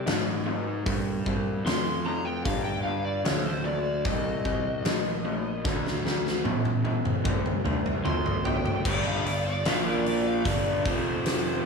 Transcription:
0.06 G#2 C3 A3, snare, open hi-hat
0.46 C3 A3
0.86 G2 C3 G3, kick, open hi-hat
1.26 C3 G3, kick
1.65 F2 C3 A3 C6, snare, open hi-hat
2.06 C3 A3 A#5
2.25 G5
2.45 G2 D3 F5, kick, open hi-hat
2.64 G5
2.83 G2 D3 F5
3.05 D5
3.25 D2 G2 E3 C#5, snare, open hi-hat
3.46 C5
3.64 G2 E3 D5
4.05 C2 C3 G3 D#5, kick, open hi-hat
4.45 C3 G3, kick
4.85 A#1 C3 A3, snare, open hi-hat
5.25 C3 A3
5.65 D2 D3 A3, kick, snare
5.86 snare
6.05 D3 A3, snare
6.27 snare
6.44 A1 D3 B3, high tom
6.65 high tom
6.85 D3 B3, high tom
7.05 mid tom
7.24 C2 D3 A3, kick, mid tom
7.46 mid tom
7.65 D3 A3, mid tom
7.86 mid tom
8.04 D2 D3 B3 C6, mid tom
8.26 floor tom
8.45 D3 B3 G5, floor tom
8.66 floor tom
8.85 G1 G2 D3 G3 D5, kick, crash
9.06 F5
9.25 G1 G2 D3 D5, open hi-hat
9.47 D5
9.65 A#1 A#2 F3 A#3 F5, snare, open hi-hat
9.88 D5
10.06 D5, open hi-hat
10.27 F5
10.45 G1 G2 D3 G3 D5, kick, open hi-hat
10.85 F1 F2 C3 F3 C5, kick, open hi-hat
11.26 snare, open hi-hat

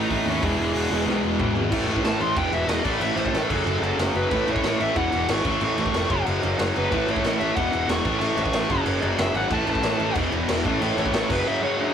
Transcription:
Already playing: A2 E3 A3 D#4 D#5
0.10 A1 A2 E3 A3, kick, open hi-hat
0.25 D#2 A2 E3 A3
0.30 C#4 C#5
0.41 E1 E2 B2 E3 G#3 G#4, kick, open hi-hat
0.58 E1
0.74 E1 E2 B2 E3, open hi-hat
0.90 E1 E2 B2 E3
1.06 B1 E2 B2 E3, snare
1.23 E1
1.39 E1 E2 B2 E3, kick, mid tom
1.54 G#1 E2 B2 E3, floor tom
1.70 A1 A2 E3 A3, kick, crash
1.86 A1 A2 E3 A3, crash
1.96 kick
2.03 A1 A2 E3 A3 A5, snare, crash
2.19 A1 A2 E3 A3 C6, crash
2.35 E1 E2 B2 E3 G5, kick, crash
2.52 E1 E2 B2 E3 E5, crash
2.67 E1 E2 B2 E3 D#5, snare, crash
2.83 A1 A2 E3 A3 D5, kick, crash
3.00 A1 A2 E3 A3 E5, crash
3.15 A1 A2 E3 A3 C5, crash
3.26 kick
3.32 A1 A2 E3 A3 A4, snare, crash
3.49 F#1 F#2 C#3 F#3, kick, crash
3.65 F#1 F#2 C#3 F#3, crash
3.82 F#1 F#2 C#3 F#3, crash
3.98 F#1 F#2 C#3 F#3, snare, crash
4.14 F#1 F#2 C#3 F#3 B4, crash
4.31 A1 A2 E3 A3, kick, crash
4.46 A1 A2 E3 A3, crash
4.51 C#5
4.56 kick
4.63 A1 A2 E3 A3, snare, crash
4.79 A1 A2 E3 A3 E5, crash
4.96 E1 E2 B2 E3 F#5, kick, crash
5.11 E1 E2 B2 E3, crash
5.28 G#1 E2 B2 E3 C#6, snare, crash
5.45 A1 A2 E3 A3, kick, crash
5.61 A1 A2 E3 A3 C#6, crash
5.77 A1 A2 E3 A3, crash
5.86 kick
5.93 F1 A2 E3 A3, snare, crash
6.09 F#1 F#2 C#3 F#3, kick, crash
6.25 F#1 F#2 C#3 F#3, crash
6.42 F#1 F#2 C#3 F#3, crash
6.57 F#1 F#2 C#3 F#3, snare, crash
6.74 F#1 F#2 C#3 F#3 B4, crash
6.90 A1 A2 E3 A3, kick, crash
7.06 A1 A2 E3 A3, crash
7.10 C#5
7.16 kick
7.23 A1 A2 E3 A3, snare, crash
7.39 A1 A2 E3 A3 E5, crash
7.56 E1 E2 B2 E3 F#5, kick, crash
7.72 E1 E2 B2 E3, crash
7.88 E1 E2 B2 E3 C#6, snare, crash
8.04 A1 A2 E3 A3, kick, crash
8.19 A1 A2 E3 A3 C#6, crash
8.37 A1 A2 E3 A3, crash
8.45 kick
8.53 A1 A2 E3 A3, snare, crash
8.69 F#1 F#2 C#3 F#3, kick, crash
8.85 F#1 F#2 C#3 F#3, crash
9.01 F#1 F#2 C#3 F#3 D5, crash
9.18 F#1 F#2 C#3 F#3 E5, snare, crash
9.34 G#1 F#2 C#3 F#3 F#5, crash
9.50 A1 A2 E3 A3 A5, kick, crash
9.66 A1 A2 E3 A3 A5, crash
9.75 kick
9.82 A1 A2 E3 A3, snare, crash
9.98 A1 A2 E3 A3, crash
10.15 E1 E2 B2 E3, kick, crash
10.31 E1 E2 B2 E3, crash
10.48 E1 E2 B2 E3, snare, crash
10.64 A1 A2 E3 A3, kick, crash
10.80 A1 A2 E3 A3, crash
10.96 A1 A2 E3 A3 C#5, crash
11.06 kick
11.12 A1 A2 E3 A3, snare, crash
11.28 F#1 F#2 C#3 F#3 B4, kick, crash
11.45 F#2 C#3 F#3 E5
11.61 F#2 C#3 F#3 C#5
11.77 F#2 C#3 F#3 D4 D5 E5

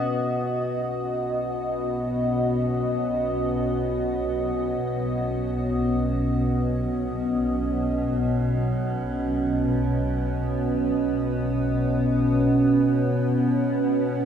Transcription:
Already playing: F#4 D#5
0.08 B1 B2
0.45 B3
1.00 C#4
13.65 F#4

